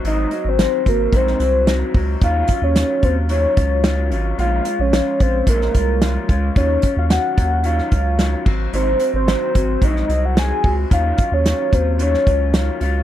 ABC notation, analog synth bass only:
X:1
M:4/4
L:1/16
Q:1/4=110
K:Ebdor
V:1 name="Analog synth bass" clef=bass
A,,,2 z A,,,2 z A,,,2 B,,,2 C,,4 D,,2 | E,,2 z E,,2 z E,,4 D,,4 A,,,2 | B,,,2 z B,,,2 z B,,,2 B,,,2 C,,4 D,,2 | E,,2 z E,,2 z E,,4 D,,4 A,,,2 |
A,,,2 z A,,,2 z A,,,2 B,,,2 C,,4 D,,2 | E,,2 z E,,2 z E,,4 D,,4 D,,2 |]